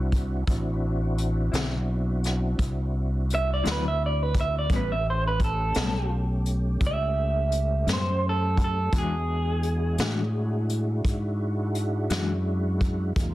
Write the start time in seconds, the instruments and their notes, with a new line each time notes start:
Already playing: fingered electric bass C2, tonewheel organ C4 D4 E4 F#4
0.12 kick, closed hi-hat
0.47 fingered electric bass A1, tonewheel organ C4 D4 E4 F#4, kick, closed hi-hat
1.18 closed hi-hat
1.52 fingered electric bass B1, clean electric guitar D3 F#3 C4 E4, snare, closed hi-hat
2.24 snare, closed hi-hat
2.58 fingered electric bass C2, kick, closed hi-hat
3.30 closed hi-hat
3.35 clean electric guitar E5
3.54 clean electric guitar D5
3.64 fingered electric bass D2, clean electric guitar D3 F#3 C4 E4, snare, closed hi-hat
3.71 clean electric guitar B4
3.88 clean electric guitar E5
4.06 clean electric guitar D5
4.23 clean electric guitar B4
4.34 kick, closed hi-hat
4.41 clean electric guitar E5
4.59 clean electric guitar D5
4.70 fingered electric bass A1, clean electric guitar A2 G3 B3 C#4, tonewheel organ A3 C#4 G4, kick, closed hi-hat
4.76 clean electric guitar B4
4.92 clean electric guitar E5
5.10 clean electric guitar C5
5.27 clean electric guitar B4
5.40 kick, closed hi-hat
5.44 clean electric guitar A4
5.74 fingered electric bass B1, clean electric guitar A2 G3 B3 C#4, snare, closed hi-hat
6.45 closed hi-hat
6.81 fingered electric bass C#2, kick, closed hi-hat
6.87 clean electric guitar E5
7.52 closed hi-hat
7.87 fingered electric bass F#2, clean electric guitar A2 G3 B3 C#4, snare, closed hi-hat
7.93 clean electric guitar C5
8.29 clean electric guitar A4
8.57 kick, closed hi-hat
8.64 clean electric guitar A4
8.92 fingered electric bass E2, clean electric guitar E3 G#3 D4 F#4, tonewheel organ G#3 D4 E4 F#4, kick, closed hi-hat
8.98 clean electric guitar G#4
9.63 closed hi-hat
9.98 fingered electric bass A2, clean electric guitar E3 G#3 D4 F#4, snare, closed hi-hat
10.69 closed hi-hat
11.05 fingered electric bass G#2, kick, closed hi-hat
11.75 closed hi-hat
12.10 fingered electric bass F#2, clean electric guitar E3 G#3 D4 F#4, snare, closed hi-hat
12.81 kick, closed hi-hat
13.16 fingered electric bass E2, tonewheel organ G3 A3 D#4 F4, kick, closed hi-hat